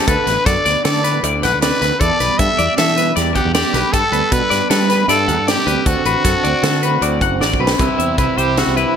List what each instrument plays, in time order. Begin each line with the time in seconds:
0.08 fingered electric bass D2, clean electric guitar D3 A3 B3 F#4 A4, trumpet B4, kick, closed hi-hat
0.27 fingered electric bass A1, clean electric guitar B3 B4, snare, closed hi-hat
0.46 fingered electric bass F#2, clean electric guitar F#4 A4, trumpet D5, kick, snare, closed hi-hat
0.65 fingered electric bass D2, clean electric guitar B3 D5, snare, closed hi-hat
0.85 clean electric guitar A2 A4, fingered electric bass D3, trumpet D5, snare, closed hi-hat
1.04 clean electric guitar B3 B4, snare, closed hi-hat
1.23 fingered electric bass D2, clean electric guitar E4 D5, closed hi-hat
1.33 clean electric guitar F#4
1.43 fingered electric bass B1, clean electric guitar F#4 F#5, trumpet B4, snare, closed hi-hat
1.53 fingered electric bass D2
1.61 clean electric guitar C3 D5, trumpet B4, snare, closed hi-hat
1.81 fingered electric bass D2, clean electric guitar D3 B4, snare, closed hi-hat
2.00 clean electric guitar E2 E4 A4, fingered electric bass E2, trumpet D5, kick, closed hi-hat
2.10 clean electric guitar G4
2.19 fingered electric bass B1, clean electric guitar G3 B4, snare, closed hi-hat
2.39 fingered electric bass G2, clean electric guitar B3 A4, trumpet E5, kick, closed hi-hat
2.49 clean electric guitar D4
2.59 fingered electric bass E2, clean electric guitar G3 D5, closed hi-hat
2.77 clean electric guitar B2 A4, fingered electric bass E3, trumpet E5, snare, closed hi-hat
2.97 clean electric guitar G3 B4, snare, closed hi-hat
3.16 fingered electric bass E2, clean electric guitar G4 D5, snare, closed hi-hat
3.35 fingered electric bass D2, clean electric guitar B3 F#5, trumpet G4, kick, closed hi-hat
3.45 fingered electric bass E2, clean electric guitar D4
3.53 clean electric guitar E2 D4 D5, trumpet G4, snare, closed hi-hat
3.74 fingered electric bass B1, clean electric guitar G3 B4, snare, closed hi-hat
3.92 clean electric guitar G2 G4 A4, fingered electric bass G2, trumpet A4, kick, closed hi-hat
4.12 fingered electric bass D2, clean electric guitar B3 B4, closed hi-hat
4.32 fingered electric bass B2, clean electric guitar D4 A4, trumpet B4, kick, closed hi-hat
4.50 fingered electric bass G2, clean electric guitar B3 D5, snare, closed hi-hat
4.70 clean electric guitar G2 A4, fingered electric bass G3, trumpet B4, snare, closed hi-hat
4.89 clean electric guitar B3 B4, snare, closed hi-hat
5.08 fingered electric bass G2, clean electric guitar E4 D5, trumpet A4, snare, closed hi-hat
5.19 clean electric guitar G4
5.28 fingered electric bass E2, clean electric guitar B3 F#5, closed hi-hat
5.38 fingered electric bass G2, clean electric guitar D4
5.47 clean electric guitar B2 D5, trumpet G4, snare, closed hi-hat
5.67 fingered electric bass D2, clean electric guitar C3 B4, closed hi-hat
5.85 fingered electric bass D2, clean electric guitar D3 C4 A4, trumpet F#4, kick, closed hi-hat
6.05 fingered electric bass A1, clean electric guitar C4 B4, closed hi-hat
6.25 fingered electric bass F#2, clean electric guitar C4 A4, kick, snare, closed hi-hat
6.44 fingered electric bass D2, clean electric guitar C4 D5, closed hi-hat
6.63 clean electric guitar A2 A4, fingered electric bass D3, snare, closed hi-hat
6.83 clean electric guitar C4 B4, closed hi-hat
7.02 fingered electric bass D2, clean electric guitar C4 D5, closed hi-hat
7.21 fingered electric bass F#1, clean electric guitar C4 F#5, kick, closed hi-hat
7.40 fingered electric bass A1, clean electric guitar D3 F#4 D5, snare
7.54 kick
7.60 fingered electric bass B1, clean electric guitar C4 B4
7.67 snare
7.78 fingered electric bass C2, clean electric guitar C3 E3 C4 B4, overdriven electric guitar C3 G3 C4 E4 G4, trumpet E4, kick, closed hi-hat
7.98 fingered electric bass E2, clean electric guitar E3 E5, closed hi-hat
8.18 fingered electric bass C2, trumpet E4, clean electric guitar B4, kick, closed hi-hat
8.37 fingered electric bass C2, clean electric guitar E4 C5, trumpet G4, closed hi-hat
8.57 clean electric guitar C4 E5, trumpet F#4, snare, closed hi-hat
8.67 fingered electric bass C2
8.76 trumpet E4, clean electric guitar B4, closed hi-hat